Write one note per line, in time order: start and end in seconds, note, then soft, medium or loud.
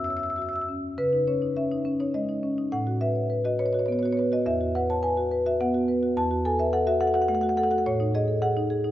0.00 0.94 E2 soft
0.00 0.26 F#4 soft
0.04 0.56 C#5 soft
0.04 0.12 E5 soft
0.04 0.10 E6 medium
0.10 0.19 E5 soft
0.10 0.17 E6 soft
0.17 0.26 E5 soft
0.17 0.23 E6 medium
0.23 0.33 E5 soft
0.23 0.30 E6 soft
0.30 0.39 E5 soft
0.30 0.36 E6 medium
0.36 0.86 F#4 soft
0.36 0.46 E5 soft
0.36 0.42 E6 soft
0.42 0.53 E5 soft
0.42 0.49 E6 medium
0.49 0.56 E6 soft
0.53 0.60 E5 soft
0.53 0.62 E6 medium
0.60 0.64 E5 soft
0.60 0.64 E6 soft
0.68 0.98 C#4 soft
0.98 2.68 C#3 medium
0.98 1.26 B4 medium
1.13 1.36 D#4 soft
1.28 1.51 C#4 soft
1.28 1.55 C#5 medium
1.42 1.56 D#4 soft
1.57 1.80 C#4 soft
1.57 1.98 E5 medium
1.72 1.94 D#4 soft
1.85 2.09 C#4 soft
2.00 2.23 D#4 soft
2.00 2.15 C#5 medium
2.14 2.38 G#3 soft
2.14 2.70 D#5 medium
2.29 2.52 D#4 soft
2.43 2.66 C#4 soft
2.58 2.72 D#4 soft
2.72 4.41 A2 medium
2.72 3.00 F#5 medium
2.87 3.10 F#4 soft
3.01 3.24 B4 soft
3.01 3.43 E5 medium
3.15 3.30 C#5 soft
3.30 3.53 B4 soft
3.45 3.68 F#4 soft
3.45 3.59 D#5 medium
3.59 3.82 B4 soft
3.59 3.66 C#5 medium
3.66 3.73 C#5 medium
3.73 3.97 F#4 soft
3.73 3.79 C#5 medium
3.79 3.86 C#5 medium
3.86 4.11 B3 soft
3.86 3.92 C#5 medium
3.92 3.99 C#5 medium
3.99 4.25 F#4 medium
3.99 4.05 C#5 medium
4.05 4.13 C#5 medium
4.13 4.19 C#5 medium
4.17 4.40 B4 soft
4.17 4.28 C#5 medium
4.32 4.46 F#4 soft
4.32 4.46 D#5 medium
4.46 6.13 E2 medium
4.46 4.73 E5 medium
4.61 4.83 F#4 soft
4.75 4.98 B4 soft
4.75 4.89 F#5 medium
4.89 5.03 C#5 soft
4.89 5.04 A5 medium
5.03 5.26 B4 soft
5.03 5.44 G#5 medium
5.17 5.40 F#4 soft
5.31 5.54 B4 medium
5.46 5.69 F#4 soft
5.46 5.60 E5 medium
5.61 5.83 B3 soft
5.61 6.15 F#5 medium
5.75 5.97 F#4 medium
5.88 6.11 B4 medium
6.03 6.17 F#4 soft
6.17 7.82 E2 medium
6.17 6.44 A5 medium
6.31 6.53 F#4 soft
6.45 6.68 A4 medium
6.45 6.59 G#5 medium
6.59 6.73 B4 soft
6.59 6.73 E5 medium
6.73 6.96 A4 medium
6.73 6.87 F#5 medium
6.87 7.09 F#4 medium
6.87 7.01 E5 medium
7.01 7.23 A4 medium
7.01 7.07 F#5 medium
7.07 7.14 F#5 medium
7.14 7.38 F#4 medium
7.14 7.22 F#5 medium
7.22 7.28 F#5 medium
7.28 7.52 A3 medium
7.28 7.35 F#5 medium
7.35 7.41 F#5 medium
7.41 7.66 F#4 medium
7.41 7.49 F#5 medium
7.49 7.57 F#5 medium
7.57 7.80 A4 medium
7.57 7.63 F#5 medium
7.63 7.71 F#5 medium
7.71 7.86 F#4 medium
7.71 7.78 F#5 medium
7.78 7.82 F#5 medium
7.86 8.91 A2 medium
7.86 8.13 C#5 medium
8.00 8.23 D#4 medium
8.15 8.37 G#4 medium
8.15 8.42 D#5 medium
8.28 8.42 A4 soft
8.42 8.65 G#4 medium
8.42 8.91 F#5 medium
8.57 8.80 D#4 medium
8.70 8.91 G#4 medium
8.84 8.91 D#4 medium